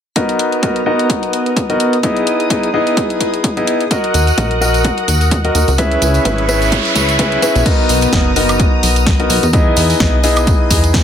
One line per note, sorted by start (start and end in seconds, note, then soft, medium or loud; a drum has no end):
0.16 2.01 B3 medium
0.16 0.60 B3 medium
0.16 0.60 D#4 medium
0.16 0.60 F#4 medium
0.16 0.60 A#4 medium
0.16 0.60 D#5 medium
0.16 2.01 A#5 medium
0.16 3.87 D#6 medium
0.16 kick loud
0.16 closed hi-hat medium
0.29 closed hi-hat soft
0.39 closed hi-hat medium
0.52 closed hi-hat soft
0.63 0.79 B3 medium
0.63 0.79 D#4 medium
0.63 0.79 F#4 medium
0.63 0.79 A#4 medium
0.63 0.79 D#5 medium
0.63 kick loud
0.63 closed hi-hat medium
0.76 closed hi-hat soft
0.86 1.66 B3 medium
0.86 1.66 D#4 medium
0.86 1.66 F#4 medium
0.86 1.66 A#4 medium
0.86 1.66 D#5 medium
0.99 closed hi-hat soft
1.10 kick loud
1.10 closed hi-hat medium
1.23 closed hi-hat soft
1.33 closed hi-hat medium
1.46 closed hi-hat soft
1.56 kick loud
1.56 closed hi-hat medium
1.70 1.94 B3 medium
1.70 1.94 D#4 medium
1.70 1.94 F#4 medium
1.70 1.94 A#4 medium
1.70 1.94 D#5 medium
1.70 closed hi-hat soft
1.80 closed hi-hat medium
1.93 closed hi-hat soft
2.03 2.48 B3 medium
2.03 2.48 D#4 medium
2.03 2.48 E4 medium
2.03 3.89 G#4 medium
2.03 2.48 G#4 medium
2.03 2.48 D#5 medium
2.03 kick loud
2.03 closed hi-hat medium
2.17 closed hi-hat soft
2.27 closed hi-hat medium
2.40 closed hi-hat soft
2.50 2.67 B3 medium
2.50 2.67 D#4 medium
2.50 2.67 E4 medium
2.50 2.67 G#4 medium
2.50 2.67 D#5 medium
2.50 kick loud
2.50 closed hi-hat medium
2.63 closed hi-hat soft
2.74 3.54 B3 medium
2.74 3.54 D#4 medium
2.74 3.54 E4 medium
2.74 3.54 G#4 medium
2.74 3.54 D#5 medium
2.87 closed hi-hat soft
2.97 kick loud
2.97 closed hi-hat medium
3.10 closed hi-hat soft
3.20 kick medium
3.20 closed hi-hat medium
3.34 closed hi-hat soft
3.44 kick loud
3.44 closed hi-hat medium
3.57 3.82 B3 medium
3.57 3.82 D#4 medium
3.57 3.82 E4 medium
3.57 3.82 G#4 medium
3.57 3.82 D#5 medium
3.57 closed hi-hat soft
3.67 closed hi-hat medium
3.81 closed hi-hat soft
3.91 4.35 F#4 medium
3.91 4.35 A#4 medium
3.91 5.77 A#4 medium
3.91 4.35 D#5 loud
3.91 5.77 F#5 medium
3.91 5.77 D#6 medium
3.91 kick loud
3.91 closed hi-hat medium
3.91 tambourine soft
4.04 closed hi-hat soft
4.14 4.32 D#2 medium
4.14 closed hi-hat medium
4.14 tambourine medium
4.27 closed hi-hat soft
4.27 tambourine soft
4.38 4.92 A#1 loud
4.38 4.54 F#4 medium
4.38 4.54 A#4 medium
4.38 4.54 D#5 medium
4.38 kick loud
4.38 closed hi-hat medium
4.38 tambourine soft
4.51 closed hi-hat soft
4.61 5.41 F#4 medium
4.61 5.41 A#4 medium
4.61 5.41 D#5 medium
4.61 tambourine medium
4.74 closed hi-hat soft
4.74 tambourine medium
4.84 kick loud
4.84 closed hi-hat medium
4.84 tambourine soft
4.98 closed hi-hat soft
5.08 5.50 D#2 medium
5.08 closed hi-hat medium
5.08 tambourine loud
5.21 closed hi-hat soft
5.21 tambourine medium
5.31 kick loud
5.31 closed hi-hat medium
5.31 tambourine soft
5.45 5.69 F#4 medium
5.45 5.69 A#4 medium
5.45 5.69 D#5 medium
5.45 closed hi-hat soft
5.55 5.64 D#2 medium
5.55 closed hi-hat medium
5.55 tambourine medium
5.68 5.97 C#2 medium
5.68 closed hi-hat soft
5.68 tambourine soft
5.78 6.23 C#4 medium
5.78 6.23 E4 medium
5.78 6.23 G#4 medium
5.78 7.64 B4 medium
5.78 6.23 B4 medium
5.78 7.64 E5 medium
5.78 6.23 E5 loud
5.78 7.64 C#6 medium
5.78 kick loud
5.78 closed hi-hat medium
5.78 noise sweep medium
5.92 closed hi-hat soft
6.02 6.19 C#2 loud
6.02 closed hi-hat medium
6.02 tambourine medium
6.14 closed hi-hat soft
6.14 tambourine soft
6.25 6.79 G#1 loud
6.25 6.42 C#4 medium
6.25 6.42 E4 medium
6.25 6.42 G#4 medium
6.25 6.42 B4 medium
6.25 6.42 E5 medium
6.25 kick loud
6.25 closed hi-hat medium
6.25 tambourine soft
6.38 closed hi-hat soft
6.49 7.17 C#4 medium
6.49 7.17 E4 medium
6.49 7.17 G#4 medium
6.49 7.17 B4 medium
6.49 7.17 E5 loud
6.49 closed hi-hat soft
6.49 tambourine medium
6.62 closed hi-hat soft
6.62 tambourine medium
6.72 kick loud
6.72 closed hi-hat medium
6.72 tambourine soft
6.85 closed hi-hat soft
6.95 7.38 C#2 medium
6.95 kick medium
6.95 closed hi-hat medium
6.95 tambourine loud
7.09 closed hi-hat soft
7.09 tambourine medium
7.19 7.40 C#4 medium
7.19 7.40 E4 medium
7.19 7.40 G#4 medium
7.19 7.40 B4 medium
7.19 7.40 E5 medium
7.19 kick loud
7.19 closed hi-hat medium
7.19 tambourine soft
7.32 closed hi-hat soft
7.42 7.63 C#4 medium
7.42 7.63 E4 medium
7.42 7.63 G#4 medium
7.42 7.63 B4 medium
7.42 7.63 E5 medium
7.42 closed hi-hat medium
7.42 tambourine loud
7.55 7.63 B1 loud
7.55 closed hi-hat soft
7.55 tambourine medium
7.66 8.10 B3 medium
7.66 9.52 B3 medium
7.66 8.10 D#4 medium
7.66 8.10 F#4 medium
7.66 8.10 A#4 medium
7.66 8.10 D#5 loud
7.66 9.52 A#5 medium
7.66 9.52 D#6 medium
7.66 kick loud
7.66 closed hi-hat medium
7.66 crash medium
7.66 tambourine soft
7.89 8.07 B1 medium
7.89 open hi-hat loud
7.89 tambourine medium
8.01 closed hi-hat medium
8.01 tambourine medium
8.13 8.67 F#1 loud
8.13 8.29 B3 medium
8.13 8.29 D#4 medium
8.13 8.29 F#4 medium
8.13 8.29 A#4 medium
8.13 8.29 D#5 medium
8.13 kick loud
8.13 snare loud
8.13 closed hi-hat medium
8.36 9.16 B3 medium
8.36 9.16 D#4 medium
8.36 9.16 F#4 medium
8.36 9.16 A#4 medium
8.36 9.16 D#5 medium
8.36 open hi-hat loud
8.36 tambourine medium
8.49 closed hi-hat medium
8.49 tambourine soft
8.49 high woodblock medium
8.59 kick loud
8.59 closed hi-hat medium
8.59 tambourine soft
8.83 9.25 B1 medium
8.83 open hi-hat loud
8.83 tambourine medium
8.96 closed hi-hat medium
8.96 tambourine soft
9.06 kick loud
9.06 snare loud
9.06 closed hi-hat medium
9.06 tambourine soft
9.20 9.44 B3 medium
9.20 9.44 D#4 medium
9.20 9.44 F#4 medium
9.20 9.44 A#4 medium
9.20 9.44 D#5 medium
9.20 closed hi-hat soft
9.30 9.39 B1 medium
9.30 open hi-hat loud
9.30 tambourine medium
9.43 9.72 E2 medium
9.43 closed hi-hat soft
9.43 tambourine medium
9.53 9.98 B3 medium
9.53 9.98 D#4 medium
9.53 9.98 E4 medium
9.53 9.98 G#4 medium
9.53 9.98 D#5 medium
9.53 11.04 D#5 medium
9.53 11.04 G#5 medium
9.53 kick loud
9.53 closed hi-hat medium
9.53 tambourine soft
9.76 9.94 E2 medium
9.76 open hi-hat loud
9.76 tambourine medium
9.90 open hi-hat medium
9.90 tambourine soft
10.00 10.54 B1 loud
10.00 10.17 B3 medium
10.00 10.17 D#4 medium
10.00 10.17 E4 medium
10.00 10.17 G#4 medium
10.00 10.17 D#5 medium
10.00 kick loud
10.00 snare loud
10.00 closed hi-hat medium
10.00 tambourine soft
10.23 11.04 B3 medium
10.23 11.04 D#4 medium
10.23 11.04 E4 medium
10.23 11.04 G#4 medium
10.23 11.04 D#5 medium
10.23 open hi-hat loud
10.23 tambourine medium
10.36 closed hi-hat soft
10.36 tambourine medium
10.36 high woodblock medium
10.47 kick loud
10.47 closed hi-hat medium
10.47 tambourine soft
10.71 11.04 E2 medium
10.71 kick medium
10.71 open hi-hat loud
10.71 tambourine loud
10.84 closed hi-hat medium
10.84 tambourine soft
10.94 kick loud
10.94 snare loud
10.94 closed hi-hat medium
10.94 tambourine soft